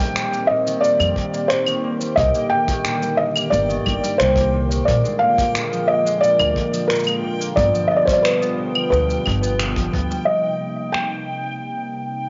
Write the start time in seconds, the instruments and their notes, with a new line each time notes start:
Already playing: harp D#3 A#3, analog synth pad D#3 A#3 C4 G4, felt piano G5, synth texture G5
0.00 harp G3, cabasa
0.16 harp A#2, finger snap, cabasa
0.32 harp A#3, cabasa
0.47 harp A#2, felt piano D#5
0.66 harp D#3, cabasa
0.81 harp A#2, felt piano D5, cabasa
1.00 upright bass F2, harp G3, cabasa, claves
1.16 harp A#2, kick
1.34 harp A#3, cabasa
1.48 harp A#2, felt piano C5, finger snap, cabasa
1.67 harp D#3, cabasa, claves
1.84 harp A#3
2.01 harp G3, cabasa
2.16 upright bass C2, harp A#2, analog synth pad D3, felt piano D#5, kick, cabasa
2.34 harp A#3, cabasa
2.50 harp A#2, felt piano G5
2.68 harp D#3, kick, cabasa
2.85 harp A#2, finger snap, cabasa
3.02 harp G3, cabasa
3.17 harp A#2, felt piano D#5
3.36 harp A#3, cabasa, claves
3.50 upright bass G1, harp A#2, felt piano D5, cabasa
3.69 harp D#3, cabasa
3.86 upright bass G1, harp A#3, kick, claves
4.03 harp G3, cabasa
4.18 upright bass C2, harp A#2, felt piano C5, finger snap, cabasa
4.36 harp A#3, kick, cabasa
4.54 harp A#2
4.71 harp D#3, cabasa
4.85 upright bass A#1, harp A#2, analog synth pad D3 G#3 F4, felt piano D5, kick, cabasa
5.04 harp G#3, cabasa
5.19 harp A#2, felt piano F5
5.38 harp A#3, kick, cabasa
5.55 harp A#2, finger snap, cabasa
5.72 harp F3, cabasa
5.88 harp A#3, felt piano D#5
6.05 harp G#3, cabasa
6.21 harp A#2, felt piano D5, cabasa
6.39 upright bass D2, harp A#3, cabasa, claves
6.56 harp A#2, kick
6.73 harp F3, cabasa
6.88 harp A#2, felt piano A#4, finger snap, cabasa
6.95 cabasa
6.99 cabasa
7.04 harp G#3, cabasa, claves
7.08 cabasa
7.23 harp A#2
7.40 harp A#3, cabasa
7.56 upright bass G1, harp B2, analog synth pad G3 B3, felt piano D5, kick, cabasa
7.74 harp F3, cabasa
7.88 harp B3, felt piano D#5
7.96 felt piano D5
8.05 harp G3, felt piano C5, kick, cabasa
8.13 felt piano D5
8.23 harp B2, felt piano B4, finger snap, cabasa
8.41 harp B3, cabasa
8.58 harp B2
8.75 harp F3, claves
8.90 upright bass D2, harp B2, felt piano B4, cabasa
9.09 harp G3, cabasa
9.25 upright bass G1, harp B2, kick, claves
9.42 harp B3, cabasa
9.59 harp B2, finger snap, cabasa
9.76 harp F3, kick, cabasa
9.93 upright bass D2, harp B3, kick
10.10 harp G3, cabasa
10.25 analog synth pad C3 G3 A#3 D#4, felt piano D#5, synth texture G5
10.92 felt piano G5, finger snap